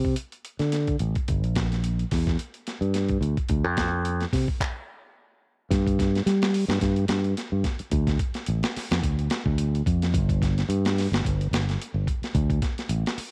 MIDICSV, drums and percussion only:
0, 0, Header, 1, 2, 480
1, 0, Start_track
1, 0, Tempo, 552995
1, 1113, Time_signature, 4, 2, 24, 8
1, 11556, End_track
2, 0, Start_track
2, 0, Title_t, "Drums"
2, 41, Note_on_c, 9, 36, 61
2, 127, Note_off_c, 9, 36, 0
2, 141, Note_on_c, 9, 42, 73
2, 228, Note_off_c, 9, 42, 0
2, 280, Note_on_c, 9, 42, 30
2, 367, Note_off_c, 9, 42, 0
2, 388, Note_on_c, 9, 42, 54
2, 475, Note_off_c, 9, 42, 0
2, 515, Note_on_c, 9, 42, 30
2, 523, Note_on_c, 9, 38, 24
2, 602, Note_off_c, 9, 42, 0
2, 610, Note_off_c, 9, 38, 0
2, 627, Note_on_c, 9, 42, 66
2, 635, Note_on_c, 9, 38, 27
2, 713, Note_off_c, 9, 42, 0
2, 721, Note_off_c, 9, 38, 0
2, 759, Note_on_c, 9, 42, 30
2, 764, Note_on_c, 9, 36, 60
2, 846, Note_off_c, 9, 42, 0
2, 851, Note_off_c, 9, 36, 0
2, 863, Note_on_c, 9, 42, 50
2, 950, Note_off_c, 9, 42, 0
2, 1002, Note_on_c, 9, 42, 31
2, 1007, Note_on_c, 9, 36, 65
2, 1088, Note_off_c, 9, 42, 0
2, 1093, Note_off_c, 9, 36, 0
2, 1111, Note_on_c, 9, 42, 64
2, 1116, Note_on_c, 9, 36, 82
2, 1198, Note_off_c, 9, 42, 0
2, 1203, Note_off_c, 9, 36, 0
2, 1248, Note_on_c, 9, 42, 31
2, 1335, Note_off_c, 9, 42, 0
2, 1350, Note_on_c, 9, 42, 47
2, 1354, Note_on_c, 9, 36, 67
2, 1358, Note_on_c, 9, 38, 69
2, 1437, Note_off_c, 9, 42, 0
2, 1441, Note_off_c, 9, 36, 0
2, 1444, Note_off_c, 9, 38, 0
2, 1492, Note_on_c, 9, 42, 32
2, 1500, Note_on_c, 9, 38, 23
2, 1579, Note_off_c, 9, 42, 0
2, 1587, Note_off_c, 9, 38, 0
2, 1595, Note_on_c, 9, 42, 64
2, 1682, Note_off_c, 9, 42, 0
2, 1731, Note_on_c, 9, 42, 30
2, 1817, Note_off_c, 9, 42, 0
2, 1835, Note_on_c, 9, 46, 67
2, 1838, Note_on_c, 9, 36, 75
2, 1842, Note_on_c, 9, 38, 30
2, 1921, Note_off_c, 9, 46, 0
2, 1925, Note_off_c, 9, 36, 0
2, 1929, Note_off_c, 9, 38, 0
2, 1970, Note_on_c, 9, 36, 66
2, 1970, Note_on_c, 9, 42, 30
2, 1978, Note_on_c, 9, 38, 29
2, 2057, Note_off_c, 9, 36, 0
2, 2057, Note_off_c, 9, 42, 0
2, 2065, Note_off_c, 9, 38, 0
2, 2076, Note_on_c, 9, 42, 62
2, 2163, Note_off_c, 9, 42, 0
2, 2205, Note_on_c, 9, 42, 30
2, 2292, Note_off_c, 9, 42, 0
2, 2316, Note_on_c, 9, 42, 49
2, 2324, Note_on_c, 9, 38, 27
2, 2403, Note_off_c, 9, 42, 0
2, 2410, Note_off_c, 9, 38, 0
2, 2448, Note_on_c, 9, 42, 27
2, 2535, Note_off_c, 9, 42, 0
2, 2552, Note_on_c, 9, 42, 63
2, 2560, Note_on_c, 9, 38, 28
2, 2639, Note_off_c, 9, 42, 0
2, 2647, Note_off_c, 9, 38, 0
2, 2678, Note_on_c, 9, 42, 31
2, 2686, Note_on_c, 9, 36, 62
2, 2765, Note_off_c, 9, 42, 0
2, 2773, Note_off_c, 9, 36, 0
2, 2800, Note_on_c, 9, 42, 45
2, 2887, Note_off_c, 9, 42, 0
2, 2928, Note_on_c, 9, 36, 65
2, 2928, Note_on_c, 9, 42, 28
2, 3015, Note_off_c, 9, 36, 0
2, 3015, Note_off_c, 9, 42, 0
2, 3026, Note_on_c, 9, 42, 62
2, 3034, Note_on_c, 9, 36, 76
2, 3113, Note_off_c, 9, 42, 0
2, 3121, Note_off_c, 9, 36, 0
2, 3271, Note_on_c, 9, 42, 49
2, 3275, Note_on_c, 9, 36, 63
2, 3279, Note_on_c, 9, 38, 73
2, 3358, Note_off_c, 9, 42, 0
2, 3362, Note_off_c, 9, 36, 0
2, 3366, Note_off_c, 9, 38, 0
2, 3515, Note_on_c, 9, 42, 66
2, 3602, Note_off_c, 9, 42, 0
2, 3650, Note_on_c, 9, 42, 30
2, 3658, Note_on_c, 9, 38, 23
2, 3737, Note_off_c, 9, 42, 0
2, 3744, Note_off_c, 9, 38, 0
2, 3756, Note_on_c, 9, 36, 70
2, 3760, Note_on_c, 9, 46, 65
2, 3768, Note_on_c, 9, 38, 28
2, 3843, Note_off_c, 9, 36, 0
2, 3847, Note_off_c, 9, 46, 0
2, 3855, Note_off_c, 9, 38, 0
2, 3890, Note_on_c, 9, 36, 60
2, 3976, Note_off_c, 9, 36, 0
2, 3997, Note_on_c, 9, 36, 81
2, 4006, Note_on_c, 9, 39, 66
2, 4084, Note_off_c, 9, 36, 0
2, 4093, Note_off_c, 9, 39, 0
2, 4957, Note_on_c, 9, 36, 94
2, 4960, Note_on_c, 9, 42, 71
2, 4968, Note_on_c, 9, 38, 29
2, 5044, Note_off_c, 9, 36, 0
2, 5047, Note_off_c, 9, 42, 0
2, 5055, Note_off_c, 9, 38, 0
2, 5091, Note_on_c, 9, 36, 66
2, 5099, Note_on_c, 9, 42, 35
2, 5178, Note_off_c, 9, 36, 0
2, 5186, Note_off_c, 9, 42, 0
2, 5200, Note_on_c, 9, 36, 70
2, 5205, Note_on_c, 9, 42, 54
2, 5213, Note_on_c, 9, 38, 29
2, 5287, Note_off_c, 9, 36, 0
2, 5292, Note_off_c, 9, 42, 0
2, 5300, Note_off_c, 9, 38, 0
2, 5342, Note_on_c, 9, 42, 32
2, 5349, Note_on_c, 9, 38, 27
2, 5428, Note_off_c, 9, 42, 0
2, 5436, Note_off_c, 9, 38, 0
2, 5441, Note_on_c, 9, 42, 69
2, 5449, Note_on_c, 9, 38, 29
2, 5528, Note_off_c, 9, 42, 0
2, 5536, Note_off_c, 9, 38, 0
2, 5571, Note_on_c, 9, 42, 31
2, 5579, Note_on_c, 9, 38, 64
2, 5658, Note_off_c, 9, 42, 0
2, 5666, Note_off_c, 9, 38, 0
2, 5678, Note_on_c, 9, 46, 71
2, 5765, Note_off_c, 9, 46, 0
2, 5806, Note_on_c, 9, 42, 33
2, 5814, Note_on_c, 9, 38, 76
2, 5893, Note_off_c, 9, 42, 0
2, 5900, Note_off_c, 9, 38, 0
2, 5914, Note_on_c, 9, 36, 70
2, 5914, Note_on_c, 9, 42, 64
2, 5921, Note_on_c, 9, 38, 30
2, 6000, Note_off_c, 9, 42, 0
2, 6001, Note_off_c, 9, 36, 0
2, 6008, Note_off_c, 9, 38, 0
2, 6044, Note_on_c, 9, 42, 33
2, 6131, Note_off_c, 9, 42, 0
2, 6147, Note_on_c, 9, 42, 57
2, 6155, Note_on_c, 9, 38, 76
2, 6234, Note_off_c, 9, 42, 0
2, 6242, Note_off_c, 9, 38, 0
2, 6287, Note_on_c, 9, 42, 30
2, 6373, Note_off_c, 9, 42, 0
2, 6399, Note_on_c, 9, 42, 70
2, 6407, Note_on_c, 9, 38, 30
2, 6486, Note_off_c, 9, 42, 0
2, 6493, Note_off_c, 9, 38, 0
2, 6632, Note_on_c, 9, 42, 52
2, 6633, Note_on_c, 9, 36, 63
2, 6640, Note_on_c, 9, 38, 30
2, 6719, Note_off_c, 9, 36, 0
2, 6719, Note_off_c, 9, 42, 0
2, 6727, Note_off_c, 9, 38, 0
2, 6763, Note_on_c, 9, 42, 33
2, 6850, Note_off_c, 9, 42, 0
2, 6870, Note_on_c, 9, 42, 66
2, 6872, Note_on_c, 9, 36, 85
2, 6956, Note_off_c, 9, 42, 0
2, 6958, Note_off_c, 9, 36, 0
2, 7004, Note_on_c, 9, 36, 65
2, 7007, Note_on_c, 9, 42, 33
2, 7015, Note_on_c, 9, 38, 28
2, 7091, Note_off_c, 9, 36, 0
2, 7094, Note_off_c, 9, 42, 0
2, 7102, Note_off_c, 9, 38, 0
2, 7112, Note_on_c, 9, 42, 56
2, 7114, Note_on_c, 9, 36, 69
2, 7198, Note_off_c, 9, 42, 0
2, 7200, Note_off_c, 9, 36, 0
2, 7240, Note_on_c, 9, 42, 32
2, 7248, Note_on_c, 9, 38, 27
2, 7327, Note_off_c, 9, 42, 0
2, 7335, Note_off_c, 9, 38, 0
2, 7347, Note_on_c, 9, 42, 69
2, 7434, Note_off_c, 9, 42, 0
2, 7490, Note_on_c, 9, 42, 35
2, 7498, Note_on_c, 9, 38, 64
2, 7577, Note_off_c, 9, 42, 0
2, 7585, Note_off_c, 9, 38, 0
2, 7608, Note_on_c, 9, 46, 74
2, 7615, Note_on_c, 9, 38, 31
2, 7694, Note_off_c, 9, 46, 0
2, 7702, Note_off_c, 9, 38, 0
2, 7733, Note_on_c, 9, 42, 37
2, 7741, Note_on_c, 9, 38, 79
2, 7820, Note_off_c, 9, 42, 0
2, 7828, Note_off_c, 9, 38, 0
2, 7837, Note_on_c, 9, 36, 74
2, 7843, Note_on_c, 9, 42, 73
2, 7924, Note_off_c, 9, 36, 0
2, 7929, Note_off_c, 9, 42, 0
2, 7975, Note_on_c, 9, 42, 34
2, 8062, Note_off_c, 9, 42, 0
2, 8073, Note_on_c, 9, 42, 59
2, 8081, Note_on_c, 9, 38, 76
2, 8160, Note_off_c, 9, 42, 0
2, 8168, Note_off_c, 9, 38, 0
2, 8209, Note_on_c, 9, 36, 67
2, 8296, Note_off_c, 9, 36, 0
2, 8317, Note_on_c, 9, 42, 77
2, 8404, Note_off_c, 9, 42, 0
2, 8463, Note_on_c, 9, 42, 32
2, 8550, Note_off_c, 9, 42, 0
2, 8561, Note_on_c, 9, 36, 65
2, 8566, Note_on_c, 9, 42, 54
2, 8648, Note_off_c, 9, 36, 0
2, 8653, Note_off_c, 9, 42, 0
2, 8700, Note_on_c, 9, 42, 37
2, 8708, Note_on_c, 9, 38, 30
2, 8787, Note_off_c, 9, 42, 0
2, 8794, Note_off_c, 9, 38, 0
2, 8801, Note_on_c, 9, 36, 87
2, 8806, Note_on_c, 9, 42, 72
2, 8887, Note_off_c, 9, 36, 0
2, 8892, Note_off_c, 9, 42, 0
2, 8932, Note_on_c, 9, 36, 70
2, 8937, Note_on_c, 9, 42, 35
2, 9019, Note_off_c, 9, 36, 0
2, 9024, Note_off_c, 9, 42, 0
2, 9043, Note_on_c, 9, 36, 72
2, 9049, Note_on_c, 9, 42, 56
2, 9057, Note_on_c, 9, 38, 29
2, 9129, Note_off_c, 9, 36, 0
2, 9136, Note_off_c, 9, 42, 0
2, 9144, Note_off_c, 9, 38, 0
2, 9182, Note_on_c, 9, 42, 32
2, 9190, Note_on_c, 9, 38, 27
2, 9269, Note_off_c, 9, 42, 0
2, 9277, Note_off_c, 9, 38, 0
2, 9286, Note_on_c, 9, 42, 72
2, 9373, Note_off_c, 9, 42, 0
2, 9419, Note_on_c, 9, 42, 33
2, 9427, Note_on_c, 9, 38, 65
2, 9506, Note_off_c, 9, 42, 0
2, 9514, Note_off_c, 9, 38, 0
2, 9533, Note_on_c, 9, 46, 69
2, 9541, Note_on_c, 9, 38, 31
2, 9620, Note_off_c, 9, 46, 0
2, 9628, Note_off_c, 9, 38, 0
2, 9663, Note_on_c, 9, 42, 35
2, 9671, Note_on_c, 9, 38, 78
2, 9750, Note_off_c, 9, 42, 0
2, 9758, Note_off_c, 9, 38, 0
2, 9764, Note_on_c, 9, 36, 76
2, 9776, Note_on_c, 9, 42, 68
2, 9851, Note_off_c, 9, 36, 0
2, 9863, Note_off_c, 9, 42, 0
2, 9904, Note_on_c, 9, 42, 35
2, 9991, Note_off_c, 9, 42, 0
2, 10010, Note_on_c, 9, 42, 56
2, 10017, Note_on_c, 9, 38, 75
2, 10096, Note_off_c, 9, 42, 0
2, 10104, Note_off_c, 9, 38, 0
2, 10146, Note_on_c, 9, 42, 32
2, 10153, Note_on_c, 9, 38, 27
2, 10232, Note_off_c, 9, 42, 0
2, 10240, Note_off_c, 9, 38, 0
2, 10256, Note_on_c, 9, 42, 69
2, 10343, Note_off_c, 9, 42, 0
2, 10480, Note_on_c, 9, 36, 69
2, 10484, Note_on_c, 9, 42, 51
2, 10567, Note_off_c, 9, 36, 0
2, 10571, Note_off_c, 9, 42, 0
2, 10617, Note_on_c, 9, 42, 32
2, 10625, Note_on_c, 9, 38, 30
2, 10704, Note_off_c, 9, 42, 0
2, 10712, Note_off_c, 9, 38, 0
2, 10718, Note_on_c, 9, 36, 86
2, 10718, Note_on_c, 9, 42, 63
2, 10805, Note_off_c, 9, 36, 0
2, 10805, Note_off_c, 9, 42, 0
2, 10848, Note_on_c, 9, 36, 70
2, 10853, Note_on_c, 9, 42, 32
2, 10935, Note_off_c, 9, 36, 0
2, 10939, Note_off_c, 9, 42, 0
2, 10955, Note_on_c, 9, 42, 54
2, 10957, Note_on_c, 9, 36, 72
2, 10962, Note_on_c, 9, 38, 28
2, 11041, Note_off_c, 9, 42, 0
2, 11043, Note_off_c, 9, 36, 0
2, 11049, Note_off_c, 9, 38, 0
2, 11093, Note_on_c, 9, 42, 33
2, 11101, Note_on_c, 9, 38, 26
2, 11180, Note_off_c, 9, 42, 0
2, 11188, Note_off_c, 9, 38, 0
2, 11192, Note_on_c, 9, 42, 71
2, 11279, Note_off_c, 9, 42, 0
2, 11339, Note_on_c, 9, 42, 29
2, 11347, Note_on_c, 9, 38, 63
2, 11426, Note_off_c, 9, 42, 0
2, 11434, Note_off_c, 9, 38, 0
2, 11440, Note_on_c, 9, 46, 75
2, 11527, Note_off_c, 9, 46, 0
2, 11556, End_track
0, 0, End_of_file